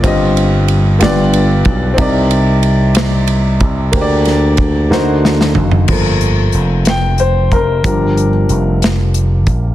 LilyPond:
<<
  \new Staff \with { instrumentName = "Upright piano" } { \time 6/8 \key g \minor \tempo 4. = 62 <c' f' g' ees''>4. <b f' g' d''>4. | <c' ees' bes' d''>2. | <bes d' g' c'' d''>4. <bes ees' fis' c''>4. | r4. g''8 c''8 bes'8 |
bes'4 r2 | }
  \new Staff \with { instrumentName = "Upright piano" } { \clef bass \time 6/8 \key g \minor g,4. g,4. | c4. r4. | d4. d4. | <f bes a'>2. |
<f g d'>8 r2 r8 | }
  \new Staff \with { instrumentName = "Slap bass" } { \clef bass \time 6/8 \key g \minor g,,4. g,,4 b,,8 | c,2~ c,8 c,8 | d,4. d,4 fis,,8 | g,,4 f,,4. f,,8 |
g,,4 f,,4. bes,,8 | }
  \new DrumStaff \with { instrumentName = "Drums" } \drummode { \time 6/8 <bd cymr>8 cymr8 cymr8 <cymr sn>8 cymr8 <bd cymr>8 | <bd cymr>8 cymr8 cymr8 <cymr sn>8 cymr8 <bd cymr>8 | <bd cymr>8 <cymr sn>8 <bd cymr>8 sn8 sn16 sn16 tomfh16 tomfh16 | <cymc bd>8 hh8 hh8 <hh sn>8 hh8 <hh bd>8 |
<hh bd>8 hh8 hh8 <hh sn>8 hh8 <hh bd>8 | }
>>